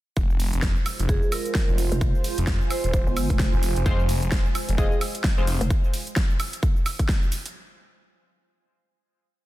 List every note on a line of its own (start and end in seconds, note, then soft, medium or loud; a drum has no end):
0.17 0.51 F1 loud
0.17 5.67 G#3 medium
0.17 5.67 F4 medium
0.17 5.71 F4 loud
0.17 5.67 C5 medium
0.17 kick loud
0.17 closed hi-hat medium
0.17 cabasa soft
0.30 cabasa soft
0.40 open hi-hat loud
0.40 cabasa medium
0.53 0.74 F1 loud
0.53 closed hi-hat medium
0.53 cabasa soft
0.62 kick loud
0.62 snare loud
0.62 closed hi-hat medium
0.62 cabasa soft
0.76 cabasa soft
0.86 open hi-hat loud
0.86 cabasa medium
0.86 high woodblock medium
0.99 1.20 F1 loud
0.99 closed hi-hat medium
0.99 cabasa soft
1.08 1.29 G#4 medium
1.08 5.70 C5 medium
1.08 kick loud
1.08 closed hi-hat medium
1.08 cabasa soft
1.23 cabasa soft
1.32 1.78 A#4 medium
1.32 5.71 G#5 medium
1.32 open hi-hat loud
1.32 cabasa medium
1.32 high woodblock medium
1.46 closed hi-hat medium
1.46 cabasa soft
1.55 kick loud
1.55 snare loud
1.55 closed hi-hat medium
1.55 cabasa soft
1.69 1.90 F1 loud
1.69 cabasa soft
1.78 open hi-hat loud
1.78 cabasa medium
1.92 2.13 F1 loud
1.92 closed hi-hat medium
1.92 cabasa soft
2.01 kick loud
2.01 closed hi-hat medium
2.01 cabasa soft
2.15 cabasa soft
2.24 open hi-hat loud
2.24 cabasa medium
2.38 2.59 F1 loud
2.38 closed hi-hat medium
2.38 cabasa soft
2.47 kick loud
2.47 snare loud
2.47 closed hi-hat medium
2.47 cabasa soft
2.61 cabasa soft
2.70 2.79 C5 medium
2.70 open hi-hat loud
2.70 cabasa medium
2.70 high woodblock medium
2.84 3.05 D#1 medium
2.84 2.90 C5 medium
2.84 closed hi-hat medium
2.84 cabasa soft
2.94 kick loud
2.94 closed hi-hat medium
2.94 cabasa soft
3.07 3.28 G1 loud
3.07 cabasa soft
3.17 open hi-hat loud
3.17 cabasa medium
3.17 high woodblock medium
3.30 3.51 F1 loud
3.30 kick medium
3.30 closed hi-hat medium
3.30 cabasa soft
3.39 kick loud
3.39 snare loud
3.39 closed hi-hat medium
3.39 cabasa soft
3.53 3.74 F1 medium
3.53 cabasa soft
3.63 open hi-hat loud
3.63 cabasa medium
3.76 3.84 F1 medium
3.76 closed hi-hat medium
3.76 cabasa soft
3.86 4.20 F1 loud
3.86 3.98 G#3 loud
3.86 3.98 C4 medium
3.86 3.98 F4 medium
3.86 3.98 C5 loud
3.86 kick loud
3.86 closed hi-hat medium
3.86 cabasa soft
3.99 cabasa soft
4.09 open hi-hat loud
4.09 cabasa medium
4.22 4.43 F1 loud
4.22 closed hi-hat medium
4.22 cabasa soft
4.32 kick loud
4.32 snare loud
4.32 closed hi-hat medium
4.32 cabasa soft
4.46 cabasa soft
4.55 open hi-hat loud
4.55 cabasa medium
4.55 high woodblock medium
4.69 4.90 F1 loud
4.69 closed hi-hat medium
4.69 cabasa soft
4.78 4.91 G#3 medium
4.78 4.91 C4 medium
4.78 4.91 F4 medium
4.78 4.98 G#4 medium
4.78 4.91 D#5 loud
4.78 kick loud
4.78 closed hi-hat medium
4.78 cabasa soft
4.92 cabasa soft
5.01 open hi-hat loud
5.01 cabasa medium
5.01 high woodblock medium
5.15 closed hi-hat medium
5.15 cabasa soft
5.24 kick loud
5.24 snare loud
5.24 closed hi-hat medium
5.24 cabasa soft
5.38 5.59 F1 loud
5.38 5.43 G#3 medium
5.38 5.43 C4 medium
5.38 5.43 F4 medium
5.38 5.43 C5 loud
5.38 cabasa soft
5.47 open hi-hat loud
5.47 cabasa medium
5.61 5.69 F1 loud
5.61 closed hi-hat medium
5.61 cabasa soft
5.70 kick loud
5.70 closed hi-hat medium
5.70 cabasa soft
5.84 cabasa soft
5.94 open hi-hat loud
5.94 cabasa medium
6.07 closed hi-hat medium
6.07 cabasa soft
6.16 kick loud
6.16 snare loud
6.16 closed hi-hat soft
6.16 cabasa soft
6.30 cabasa soft
6.40 open hi-hat loud
6.40 cabasa medium
6.40 high woodblock medium
6.53 closed hi-hat medium
6.53 cabasa soft
6.63 kick loud
6.63 closed hi-hat medium
6.63 cabasa soft
6.76 cabasa soft
6.86 open hi-hat loud
6.86 cabasa medium
6.86 high woodblock medium
6.99 kick medium
6.99 closed hi-hat medium
6.99 cabasa soft
7.09 kick loud
7.09 snare loud
7.09 closed hi-hat medium
7.09 cabasa soft
7.23 cabasa soft
7.32 open hi-hat loud
7.32 cabasa medium
7.46 closed hi-hat medium
7.46 cabasa soft